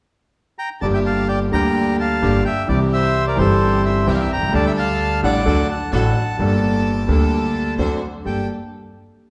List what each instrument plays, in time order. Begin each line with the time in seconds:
0.59 bandoneon G5 A#5
0.81 upright bass G1, grand piano G1 G2 D3 G3 A#3 G4, string section A#3 D4 G4, bandoneon D5 A5
0.94 bandoneon E5 G5
1.05 bandoneon F5 A5
1.28 bandoneon D5 G5
1.51 upright bass D2, grand piano D2 D3 G3 A#3 G4, string section A#3 D4 G4, bandoneon G5 A#5
2.00 bandoneon F5 A5
2.22 upright bass G1, grand piano G1 G2 D3 G3 A#3 G4, string section A#3 D4 G4
2.45 bandoneon E5 G5
2.67 upright bass C2, grand piano C2 C3 E3 G3 C4 G4, string section C4 E4 G4, bandoneon G4 D5
2.93 bandoneon C5 E5
3.27 bandoneon A#4 D5
3.36 grand piano G1 G2 E3 G3 C4, upright bass G1, string section C4 E4 G4, bandoneon C5
3.40 grand piano G4, bandoneon A4
3.85 bandoneon C5 E5
4.07 grand piano C2 C3 E3 G3 C4 G4, upright bass C2, string section C4 E4 G4, bandoneon E5 G5
4.15 bandoneon F5 G5
4.21 bandoneon E5
4.32 bandoneon G5 A#5
4.37 grand piano B1, upright bass B1
4.43 grand piano C2, upright bass C2
4.48 grand piano C#2 G3, upright bass C#2
4.53 grand piano D2 D3 A3 D4 A4, upright bass D2, string section D4 G4 A4, bandoneon D5 A5
4.66 bandoneon E5 G5
4.77 bandoneon F5 A5
5.23 grand piano A1 A2 G3 A3 D4 A4, upright bass A1, string section D4 G4 A4, bandoneon D5 F#5
5.46 grand piano D2 D3 F#3 A3 D4 A4, upright bass D2, string section D4 F#4 A4
5.69 bandoneon F#5 A5
5.92 upright bass A1, grand piano A1 A2 F#3 A3 D4 A4, string section D4 F#4 A4, bandoneon F#5 A5
6.38 upright bass G1, grand piano G1 G2 G3 A#3 D4, string section A#3 G4 A4
6.42 grand piano A4
7.07 upright bass D2, grand piano D2 D3 G3 A#3 D4, string section A#3 G4 A4
7.11 grand piano A4
7.78 upright bass D2, grand piano D2 D3 F#3 C4 D4 A4, string section D4 F#4 C5
8.25 upright bass G1, grand piano G2 A#3 G4 A4, string section A#3 G4 A4, bandoneon G5